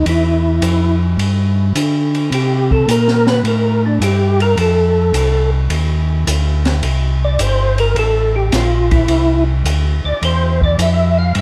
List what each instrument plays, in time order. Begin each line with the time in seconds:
0.06 tonewheel organ E2 E4, ride
0.62 tonewheel organ F2, hi-hat pedal, ride
1.17 tonewheel organ G2, ride
1.75 tonewheel organ D3, hi-hat pedal, ride
2.15 ride
2.31 tonewheel organ C3 G4, ride
2.71 tonewheel organ A4, kick
2.88 tonewheel organ A#2 A#4, hi-hat pedal, ride
3.08 snare
3.27 tonewheel organ B4, snare
3.43 tonewheel organ A2, ride
3.48 tonewheel organ A#4
3.86 tonewheel organ D4
4.00 tonewheel organ G2 G4, hi-hat pedal, ride
4.40 tonewheel organ A#4, ride
4.57 tonewheel organ F2 A4, ride
5.14 tonewheel organ C2, hi-hat pedal, ride
5.70 tonewheel organ D#2, ride
6.27 tonewheel organ D2, hi-hat pedal, ride
6.65 snare, ride
6.83 tonewheel organ C2, ride
7.24 tonewheel organ D5
7.39 tonewheel organ G1 C5, hi-hat pedal, ride
7.78 tonewheel organ A#4, ride
7.96 tonewheel organ A1 A4, ride
8.36 tonewheel organ G4
8.52 tonewheel organ A#1 F4, snare, hi-hat pedal, ride
8.91 tonewheel organ E4, kick, ride
9.08 tonewheel organ C2, ride
9.65 tonewheel organ D2, hi-hat pedal, ride
10.04 tonewheel organ D2 D5
10.22 tonewheel organ E2 C5, ride
10.61 tonewheel organ D5, kick
10.78 tonewheel organ F2 E5, hi-hat pedal, ride
11.19 tonewheel organ F5
11.35 tonewheel organ G2, ride